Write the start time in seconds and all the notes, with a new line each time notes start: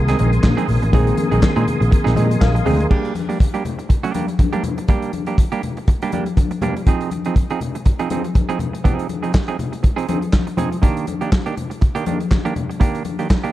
Already playing: C2 D#3 A#3 C4 G#4 A#4 G#5 C6 D#6
0.08 G#3 C4 D#4 G#4, snare, closed hi-hat
0.19 A#1 G#3 C4 D#4 G#4, closed hi-hat, muted conga, high conga
0.33 muted clean electric guitar stroke, closed hi-hat
0.43 A#2, muted clean electric guitar stroke, kick, snare, clap, high conga
0.57 G#3 C4 D#4 G#4, closed hi-hat
0.68 A#1, open hi-hat, low conga
0.82 A1, muted clean electric guitar stroke, closed hi-hat
0.92 A#1 D#3 G#3 A#3 C4 D#4 G#4, kick, closed hi-hat, low conga
1.07 closed hi-hat
1.18 muted clean electric guitar stroke, closed hi-hat, muted conga, high conga
1.31 A#1 G#3 C4 D#4 G#4, closed hi-hat
1.42 muted picked electric bass stroke, kick, snare, clap, muted conga
1.56 A#2 G#3 C4 D#4 G#4, closed hi-hat
1.68 closed hi-hat, muted conga, low conga
1.80 A#1, muted clean electric guitar stroke, closed hi-hat
1.91 muted clean electric guitar stroke, kick, closed hi-hat, muted conga
2.04 A#1 G#3 C4 D#4 G#4, snare, closed hi-hat
2.15 A#2 G#3 C4 D#4 G#4 D#5, closed hi-hat, muted conga, high conga
2.30 muted clean electric guitar stroke, closed hi-hat
2.40 A#1 A#4 F5, muted clean electric guitar stroke, kick, snare, clap, high conga
2.55 muted clean electric guitar stroke, closed hi-hat
2.66 D2 G#3 C4 D#4 G#4, open hi-hat, high conga, low conga
2.80 muted clean electric guitar stroke, closed hi-hat
2.90 G3 A#3 D4 G4, kick, crash, muted conga
3.05 closed hi-hat
3.15 muted clean electric guitar stroke, closed hi-hat, muted conga, high conga
3.29 G3 A#3 D4 G4, closed hi-hat
3.39 kick, closed hi-hat, muted conga
3.54 G3 A#3 D4 G4, closed hi-hat
3.65 closed hi-hat, muted conga, low conga
3.79 muted clean electric guitar stroke, closed hi-hat
3.89 muted clean electric guitar stroke, kick, closed hi-hat
4.03 G3 A#3 D4 G4, closed hi-hat
4.14 G3 A#3 D4 G4, closed hi-hat, muted conga, high conga
4.28 muted clean electric guitar stroke, closed hi-hat
4.39 muted clean electric guitar stroke, kick, closed hi-hat, muted conga, high conga
4.53 G3 A#3 D4 G4, closed hi-hat
4.63 muted clean electric guitar stroke, closed hi-hat, muted conga, high conga, low conga
4.78 muted clean electric guitar stroke, closed hi-hat
4.88 G3 A#3 D4 G4, kick, closed hi-hat
5.02 closed hi-hat
5.13 muted clean electric guitar stroke, closed hi-hat, high conga
5.26 G3 A#3 D4 G4, closed hi-hat
5.38 muted clean electric guitar stroke, kick, closed hi-hat, muted conga
5.52 G3 A#3 D4 G4, closed hi-hat
5.63 closed hi-hat, muted conga, low conga
5.77 muted clean electric guitar stroke, closed hi-hat
5.88 muted clean electric guitar stroke, kick, closed hi-hat
6.02 G3 A#3 D4 G4, closed hi-hat
6.12 G3 A#3 D4 G4, closed hi-hat, muted conga, high conga
6.26 muted clean electric guitar stroke, closed hi-hat
6.37 muted clean electric guitar stroke, kick, closed hi-hat, muted conga, high conga
6.51 muted clean electric guitar stroke, closed hi-hat
6.61 G3 A#3 D4 G4, closed hi-hat, muted conga, high conga, low conga
6.76 muted clean electric guitar stroke, closed hi-hat
6.87 F3 C4 D#4 G#4, kick, closed hi-hat
7.01 closed hi-hat
7.11 muted clean electric guitar stroke, closed hi-hat, muted conga, high conga
7.25 F3 C4 D#4 G#4, closed hi-hat
7.35 kick, closed hi-hat, muted conga
7.50 F3 C4 D#4 G#4, closed hi-hat
7.61 closed hi-hat, low conga
7.75 muted clean electric guitar stroke, closed hi-hat
7.86 muted clean electric guitar stroke, kick, closed hi-hat
7.99 F3 C4 D#4 G#4, closed hi-hat
8.10 F3 C4 D#4 G#4, closed hi-hat, high conga
8.24 muted clean electric guitar stroke, closed hi-hat
8.35 muted clean electric guitar stroke, kick, closed hi-hat, high conga
8.49 F3 C4 D#4 G#4, closed hi-hat
8.59 closed hi-hat, high conga, low conga
8.73 muted clean electric guitar stroke, closed hi-hat
8.84 F3 C4 D#4 G#4, kick, closed hi-hat, muted conga, low conga
8.99 closed hi-hat
9.09 closed hi-hat, muted conga, high conga
9.23 F3 C4 D#4 G#4, closed hi-hat
9.33 kick, snare, clap, muted conga
9.48 F3 C4 D#4 G#4, closed hi-hat
9.59 closed hi-hat, muted conga, low conga
9.73 muted clean electric guitar stroke, closed hi-hat
9.83 muted clean electric guitar stroke, kick, closed hi-hat
9.96 F3 C4 D#4 G#4, closed hi-hat
10.08 F3 C4 D#4 G#4, closed hi-hat, muted conga, high conga
10.21 muted clean electric guitar stroke, closed hi-hat
10.33 muted clean electric guitar stroke, kick, snare, clap, high conga
10.47 muted clean electric guitar stroke, closed hi-hat
10.57 F3 C4 D#4 G#4, closed hi-hat, muted conga, high conga, low conga
10.72 muted clean electric guitar stroke, closed hi-hat
10.82 D#3 A#3 D4 G4, kick, closed hi-hat
10.97 closed hi-hat
11.07 muted clean electric guitar stroke, closed hi-hat, high conga
11.21 D#3 A#3 D4 G4, closed hi-hat
11.32 kick, snare, clap, muted conga
11.46 D#3 A#3 D4 G4, closed hi-hat
11.56 muted clean electric guitar stroke, closed hi-hat, muted conga, low conga
11.70 muted clean electric guitar stroke, closed hi-hat
11.81 muted clean electric guitar stroke, kick, closed hi-hat
11.95 D#3 A#3 D4 G4, closed hi-hat
12.06 D#3 A#3 D4 G4, closed hi-hat, muted conga, high conga
12.20 muted clean electric guitar stroke, closed hi-hat
12.31 muted clean electric guitar stroke, kick, snare, clap, high conga
12.45 D#3 A#3 D4 G4, closed hi-hat
12.56 muted clean electric guitar stroke, closed hi-hat, high conga, low conga
12.70 muted clean electric guitar stroke, closed hi-hat
12.80 D#3 A#3 D4 G4, kick, closed hi-hat
12.95 closed hi-hat
13.05 muted clean electric guitar stroke, closed hi-hat, high conga
13.19 D#3 A#3 D4 G4, closed hi-hat
13.29 kick, snare, clap, muted conga
13.44 D#3 A#3 D4 G4, closed hi-hat